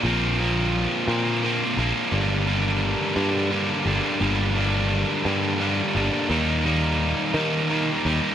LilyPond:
<<
  \new Staff \with { instrumentName = "Distorted electric guitar" } { \clef bass \time 6/8 \key g \minor \tempo 4. = 57 <bes, f bes c'>8 <bes, f bes c'>4 <bes, f bes c'>8 <bes, f bes c'>8 <bes, f bes c'>8 | <g, d g bes d'>8 <g, d g bes d'>4 <g, d g bes d'>8 <g, d g bes d'>8 <g, d g bes d'>8 | <g, d g bes d'>8 <g, d g bes d'>4 <g, d g bes d'>8 <g, d g bes d'>8 <g, d g bes d'>8 | <ees g bes ees'>8 <ees g bes ees'>4 <ees g bes ees'>8 <ees g bes ees'>8 <ees g bes ees'>8 | }
  \new Staff \with { instrumentName = "Picked electric bass" } { \clef bass \time 6/8 \key g \minor bes,,4. bes,4 bes,,16 r16 | g,,4. g,4 g,,16 r16 | g,,4. g,4 g,,16 r16 | ees,4. ees4 ees,16 r16 | }
>>